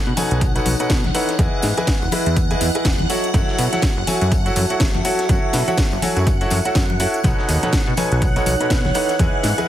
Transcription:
Already playing: ambient pad D#4, string machine F#5
0.07 analog synth bass B2, ambient pad C#5
0.17 grand piano B2 D#4 A4 B4 C#5 G#5, closed hi-hat, open hi-hat, tambourine, high conga
0.31 analog synth bass B1, closed hi-hat, tambourine
0.41 kick, closed hi-hat, tambourine
0.55 grand piano B2 D#4 A4 B4 C#5 F#5, closed hi-hat, tambourine
0.66 analog synth bass B1, closed hi-hat, open hi-hat, tambourine, high conga
0.79 grand piano B2 D#4 A4 B4 C#5 F#5, closed hi-hat, tambourine
0.90 analog synth bass B2, kick, snare, closed hi-hat, tambourine
1.04 analog synth bass B1, snare, high conga
1.15 grand piano E3 D#4 A4 B4 C#5 F#5, closed hi-hat, open hi-hat, tambourine
1.29 snare, closed hi-hat, tambourine
1.39 analog synth bass E2, grand piano E3 E4 G#4 B4 D#5 G#5, ambient pad E4, kick, closed hi-hat, tambourine, high conga
1.62 analog synth bass G#2, snare, closed hi-hat, open hi-hat, tambourine
1.77 grand piano E3 E4 G#4 B4 D#5 G#5, closed hi-hat, tambourine, high conga
1.87 ambient pad D#5, kick, snare, closed hi-hat, open hi-hat, tambourine
1.96 ambient pad G#5
2.02 analog synth bass E1, tambourine
2.11 grand piano E3 E4 G#4 B4 D#5 B5, closed hi-hat, open hi-hat, tambourine, high conga
2.26 analog synth bass E2, closed hi-hat, tambourine
2.36 kick, closed hi-hat, tambourine
2.50 grand piano E3 E4 G#4 B4 D#5 G#5, closed hi-hat, tambourine
2.61 analog synth bass E2, snare, closed hi-hat, open hi-hat, tambourine, high conga
2.75 grand piano E3 E4 G#4 B4 D#5 G#5, closed hi-hat, tambourine
2.85 analog synth bass E1, kick, snare, closed hi-hat, tambourine
2.99 analog synth bass E2, high conga
3.10 grand piano F#3 E4 F#4 A4 C#5 F#5, ambient pad F#4, closed hi-hat, open hi-hat, tambourine
3.24 closed hi-hat, tambourine
3.29 ambient pad E5
3.34 analog synth bass F#2, grand piano F#3 E4 F#4 A4 C#5 F#5, kick, closed hi-hat, tambourine, high conga
3.48 snare
3.59 analog synth bass B2, snare, closed hi-hat, open hi-hat, tambourine
3.63 ambient pad A5
3.73 grand piano F#3 E4 F#4 A4 C#5 F#5, closed hi-hat, tambourine, high conga
3.82 kick, snare, closed hi-hat, tambourine
3.97 analog synth bass F#1
4.07 grand piano F#3 E4 F#4 A4 C#5 G#5, closed hi-hat, open hi-hat, tambourine, high conga
4.21 analog synth bass F#2, closed hi-hat, tambourine
4.31 kick, closed hi-hat, tambourine
4.46 grand piano F#3 E4 F#4 A4 C#5 F#5, closed hi-hat, tambourine
4.56 analog synth bass F#2, closed hi-hat, open hi-hat, tambourine, high conga
4.70 grand piano F#3 E4 F#4 A4 C#5 F#5, closed hi-hat, tambourine
4.80 analog synth bass F#1, kick, snare, closed hi-hat, tambourine
4.94 analog synth bass F#2, snare, high conga
5.05 grand piano F#3 E4 F#4 A4 C#5 F#5, closed hi-hat, open hi-hat, tambourine
5.18 snare, closed hi-hat, tambourine
5.29 analog synth bass F#2, grand piano F#3 E4 F#4 A4 C#5 F#5, kick, closed hi-hat, tambourine, high conga
5.53 analog synth bass B2, snare, closed hi-hat, open hi-hat, tambourine
5.68 grand piano F#3 E4 F#4 A4 C#5 F#5, closed hi-hat, tambourine, high conga
5.78 kick, snare, closed hi-hat, open hi-hat, tambourine
5.92 analog synth bass F#1, tambourine
6.02 grand piano F#3 E4 F#4 A4 C#5 G#5, closed hi-hat, open hi-hat, tambourine, high conga
6.16 analog synth bass F#2, closed hi-hat, tambourine
6.27 kick, closed hi-hat, tambourine
6.41 grand piano F#3 E4 F#4 A4 C#5 F#5, closed hi-hat, tambourine
6.50 analog synth bass F#2, snare, closed hi-hat, open hi-hat, tambourine, high conga
6.65 grand piano F#3 E4 F#4 A4 C#5 F#5, closed hi-hat, tambourine
6.75 analog synth bass F#2, kick, snare, closed hi-hat, tambourine
6.90 high conga
7.00 grand piano E4 F#4 A4 C#5 F#5, closed hi-hat, open hi-hat, tambourine
7.14 closed hi-hat, tambourine
7.24 analog synth bass B1, grand piano B2 D#4 A4 B4 C#5 F#5, ambient pad D#4, string machine F#5, kick, closed hi-hat, tambourine, high conga
7.34 ambient pad C#5
7.38 snare
7.49 analog synth bass D#2, snare, closed hi-hat, open hi-hat, tambourine
7.62 grand piano B2 D#4 A4 B4 C#5 F#5, closed hi-hat, tambourine, high conga
7.73 kick, snare, closed hi-hat, tambourine
7.87 analog synth bass B2
7.97 grand piano B2 D#4 A4 B4 C#5 G#5, closed hi-hat, open hi-hat, tambourine, high conga
8.12 analog synth bass B1, closed hi-hat, tambourine
8.22 kick, closed hi-hat, tambourine
8.36 grand piano B2 D#4 A4 B4 C#5 F#5, closed hi-hat, tambourine
8.46 analog synth bass B1, closed hi-hat, open hi-hat, tambourine, high conga
8.60 grand piano B2 D#4 A4 B4 C#5 F#5, closed hi-hat, tambourine
8.70 analog synth bass B2, kick, snare, closed hi-hat, tambourine
8.85 analog synth bass B1, snare, high conga
8.95 grand piano E3 D#4 A4 B4 C#5 F#5, closed hi-hat, open hi-hat, tambourine
9.09 snare, closed hi-hat, tambourine
9.19 analog synth bass E2, grand piano E3 E4 G#4 B4 D#5 G#5, ambient pad E4, kick, closed hi-hat, tambourine, high conga
9.43 analog synth bass G#2, snare, closed hi-hat, open hi-hat, tambourine
9.58 grand piano E3 E4 G#4 B4 D#5 G#5, closed hi-hat, tambourine, high conga

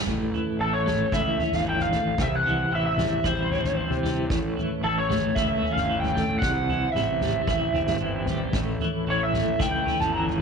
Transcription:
0.06 fingered electric bass A1, clean electric guitar A2, tonewheel organ E3 A3 C#4 A4, kick, floor tom
0.33 clean electric guitar E3, floor tom
0.59 fingered electric bass A1, clean electric guitar E3, lead electric guitar A4
0.73 lead electric guitar C#5
0.86 clean electric guitar A3, floor tom, mid tom
1.12 fingered electric bass C#2, clean electric guitar E4, lead electric guitar E5, kick, floor tom
1.39 clean electric guitar C#4, floor tom
1.52 fingered electric bass G1, lead electric guitar F5, floor tom
1.67 clean electric guitar E3, lead electric guitar G5
1.79 lead electric guitar F5, floor tom
1.91 clean electric guitar A3, floor tom
2.06 fingered electric bass A1
2.18 fingered electric bass C2, clean electric guitar C3, tonewheel organ C4 G4 C5, lead electric guitar E5, kick, floor tom
2.35 lead electric guitar F#5
2.44 clean electric guitar E3, floor tom
2.71 fingered electric bass A1, clean electric guitar E3
2.75 lead electric guitar E5
2.86 lead electric guitar E5
2.98 clean electric guitar G3, floor tom, mid tom
3.24 fingered electric bass A1, clean electric guitar E4, lead electric guitar C5, kick, floor tom
3.50 clean electric guitar C4, floor tom
3.64 floor tom
3.77 clean electric guitar E3
3.90 fingered electric bass C3, floor tom
4.03 clean electric guitar G3, floor tom
4.30 fingered electric bass A1, clean electric guitar A2, tonewheel organ E3 C#4 A4 C#5, kick, floor tom
4.57 clean electric guitar E3, floor tom
4.83 fingered electric bass A1, clean electric guitar E3, lead electric guitar A4
4.98 lead electric guitar C#5
5.09 clean electric guitar A3, floor tom, mid tom
5.35 fingered electric bass C#2, clean electric guitar E4, lead electric guitar E5, kick, floor tom
5.62 clean electric guitar C#4, floor tom
5.73 fingered electric bass G1, lead electric guitar F5, floor tom
5.89 clean electric guitar E3
6.00 lead electric guitar G5, floor tom
6.14 clean electric guitar A3, floor tom
6.28 fingered electric bass A1
6.39 fingered electric bass C2, clean electric guitar C3, tonewheel organ C4 G4 C5, lead electric guitar F#5, kick, floor tom
6.69 clean electric guitar E3, floor tom
6.92 fingered electric bass A1, clean electric guitar E3, lead electric guitar E5, mid tom
7.21 clean electric guitar G3, floor tom, mid tom
7.47 fingered electric bass A1, clean electric guitar E4, kick, floor tom
7.74 fingered electric bass F#1, clean electric guitar C4, floor tom
7.86 floor tom, mid tom
8.01 fingered electric bass G1, clean electric guitar E3
8.26 fingered electric bass A1, clean electric guitar G3, floor tom
8.52 fingered electric bass A1, clean electric guitar A2, tonewheel organ C#4 A4 C#5, kick, floor tom
8.79 clean electric guitar E3, floor tom
9.07 fingered electric bass A1, clean electric guitar E3, lead electric guitar C#5
9.23 lead electric guitar E5
9.33 clean electric guitar A3, floor tom, mid tom
9.59 fingered electric bass C#2, clean electric guitar E4, lead electric guitar G5, kick, floor tom
9.86 clean electric guitar C#4, floor tom
10.00 fingered electric bass G1, lead electric guitar A5, floor tom
10.13 clean electric guitar E3, lead electric guitar A#5
10.27 floor tom

